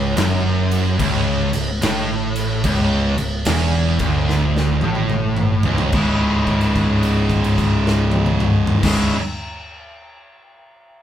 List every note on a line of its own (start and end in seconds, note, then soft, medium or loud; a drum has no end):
0.00 0.13 C#1 loud
0.00 0.16 C#2 loud
0.17 0.96 F#1 medium
0.17 0.98 F#2 loud
0.17 snare loud
0.17 crash medium
0.71 crash medium
0.99 1.50 C#1 loud
0.99 1.51 C#2 loud
0.99 kick loud
0.99 crash loud
1.53 1.80 C#1 medium
1.53 1.76 C#2 medium
1.53 crash medium
1.82 2.60 A1 medium
1.82 2.64 A2 loud
1.82 snare loud
1.82 crash medium
2.36 crash medium
2.64 3.14 C#1 loud
2.64 3.17 C#2 loud
2.64 kick loud
2.64 crash medium
3.18 3.45 C#1 medium
3.18 3.41 C#2 medium
3.18 crash medium
3.45 3.97 E1 medium
3.45 3.99 E2 loud
3.45 snare loud
3.45 crash loud
3.99 4.78 D1 loud
3.99 4.82 D2 loud
3.99 kick loud
3.99 crash medium
4.29 snare medium
4.57 snare medium
4.81 5.61 A1 medium
4.81 5.64 A2 loud
4.81 high tom medium
4.95 high tom medium
5.10 mid tom medium
5.37 mid tom medium
5.63 5.92 C#1 loud
5.63 5.92 C#2 loud
5.63 floor tom loud
5.78 floor tom loud
5.92 8.66 C#1 loud
5.92 8.82 C#2 loud
5.92 8.83 G#2 loud
5.92 8.84 C#3 loud
5.92 8.85 G#3 loud
5.92 kick loud
5.92 crash medium
5.97 8.86 E4 loud
6.47 kick medium
6.47 crash soft
6.61 crash soft
6.76 kick medium
6.76 crash medium
7.03 crash medium
7.30 kick medium
7.30 crash medium
7.44 crash medium
7.58 kick medium
7.58 crash medium
7.87 snare medium
8.11 high tom loud
8.26 mid tom loud
8.40 mid tom loud
8.67 floor tom loud
8.82 9.11 C#1 loud
8.82 9.13 C#2 medium
8.82 9.14 G#2 loud
8.82 9.14 C#3 medium
8.82 9.15 G#3 medium
8.82 kick loud
8.82 snare loud
8.82 crash loud
8.86 9.15 E4 medium